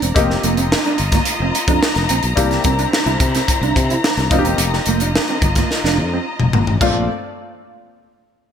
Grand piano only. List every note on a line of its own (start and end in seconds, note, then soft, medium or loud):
0.00 0.11 A3 medium
0.00 0.11 C4 medium
0.00 0.12 D4 medium
0.00 0.12 F4 medium
0.14 2.33 A#3 medium
0.14 2.33 C4 medium
0.14 2.33 D#4 medium
0.14 2.33 G4 medium
2.36 4.26 A#3 medium
2.36 4.27 D4 medium
2.36 4.27 E4 medium
2.36 4.27 G4 medium
4.30 6.49 A#3 medium
4.30 6.49 C4 medium
4.30 6.49 D#4 medium
4.30 4.38 F4 medium
4.38 6.53 G4 medium
6.81 7.07 A3 medium
6.81 7.07 C4 medium
6.81 7.07 D4 medium
6.81 7.07 F4 medium